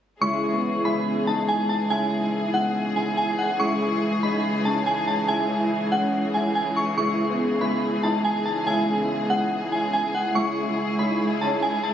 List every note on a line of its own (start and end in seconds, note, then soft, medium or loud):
0.21 10.32 C#2 medium
0.21 0.42 C#3 medium
0.21 10.32 C#3 medium
0.21 10.32 E3 medium
0.21 0.43 G#3 medium
0.21 0.43 E4 loud
0.21 6.94 G#4 medium
0.21 0.81 C#6 loud
0.52 0.74 C#3 medium
0.52 0.74 G#3 medium
0.52 0.74 B3 medium
0.84 1.13 C#3 medium
0.84 1.13 G#3 medium
0.84 1.13 E4 medium
0.84 1.02 B5 medium
1.27 1.69 C#3 medium
1.27 1.69 G#3 medium
1.27 1.70 D#4 medium
1.27 1.45 A5 medium
1.48 1.66 G#5 medium
1.69 1.87 A5 medium
1.90 2.11 C#3 medium
1.90 2.12 G#3 medium
1.90 2.12 E4 loud
1.90 2.50 G#5 loud
2.22 2.43 C#3 medium
2.22 2.43 G#3 medium
2.22 2.44 E4 medium
2.53 2.82 C#3 medium
2.53 2.82 G#3 medium
2.53 2.82 E4 medium
2.53 2.71 F#5 medium
2.95 3.38 C#3 medium
2.95 3.38 G#3 medium
2.95 3.39 E4 medium
2.95 3.13 G#5 medium
3.17 3.35 G#5 medium
3.39 3.56 F#5 medium
3.59 3.80 C#3 medium
3.59 3.81 G#3 medium
3.59 3.81 E4 loud
3.59 4.19 C#6 medium
3.90 4.12 C#3 medium
3.90 4.12 G#3 medium
3.90 4.13 E4 medium
4.23 4.51 C#3 medium
4.23 4.51 G#3 medium
4.23 4.52 D#4 medium
4.23 4.40 B5 medium
4.65 5.07 C#3 medium
4.65 5.08 G#3 medium
4.65 5.08 C#4 medium
4.65 4.83 A5 medium
4.86 5.04 G#5 medium
5.08 5.25 A5 medium
5.28 5.49 C#3 medium
5.28 5.50 G#3 medium
5.28 5.50 E4 loud
5.28 5.88 G#5 loud
5.60 5.81 C#3 medium
5.60 5.81 G#3 medium
5.60 5.82 E4 medium
5.92 6.20 C#3 medium
5.92 6.20 G#3 medium
5.92 6.21 C#4 medium
5.92 6.32 F#5 medium
6.34 6.76 C#3 medium
6.34 6.76 G#3 medium
6.34 6.77 E4 medium
6.34 6.52 G#5 medium
6.55 6.73 G#5 medium
6.77 6.94 C#6 medium
6.97 7.18 C#3 medium
6.97 7.19 G#3 medium
6.97 7.19 E4 loud
6.97 11.94 G#4 medium
6.97 7.57 C#6 loud
7.28 7.50 C#3 medium
7.28 7.50 G#3 medium
7.28 7.51 B3 medium
7.60 7.89 C#3 medium
7.60 7.89 G#3 medium
7.60 7.89 E4 medium
7.60 7.78 B5 medium
8.03 8.45 C#3 medium
8.03 8.46 G#3 medium
8.03 8.46 D#4 medium
8.03 8.21 A5 medium
8.24 8.42 G#5 medium
8.46 8.63 A5 medium
8.66 8.87 C#3 medium
8.66 8.88 G#3 medium
8.66 8.88 E4 loud
8.66 9.26 G#5 loud
8.98 9.19 C#3 medium
8.98 9.20 G#3 medium
8.98 9.20 E4 medium
9.29 9.58 C#3 medium
9.29 9.58 G#3 medium
9.29 9.58 E4 medium
9.29 9.47 F#5 medium
9.71 10.14 C#3 medium
9.71 10.14 G#3 medium
9.71 10.15 E4 medium
9.71 9.90 G#5 medium
9.93 10.11 G#5 medium
10.15 10.32 F#5 medium
10.35 11.94 C#2 medium
10.35 10.56 C#3 medium
10.35 11.94 C#3 medium
10.35 10.57 G#3 medium
10.35 11.94 E4 medium
10.35 10.57 E4 loud
10.35 10.95 C#6 medium
10.67 10.88 C#3 medium
10.67 10.88 G#3 medium
10.67 10.89 E4 medium
10.99 11.27 C#3 medium
10.99 11.27 G#3 medium
10.99 11.28 D#4 medium
10.99 11.16 B5 medium
11.41 11.83 C#3 medium
11.41 11.84 G#3 medium
11.41 11.84 C#4 medium
11.41 11.59 A5 medium
11.62 11.80 G#5 medium
11.84 11.94 A5 medium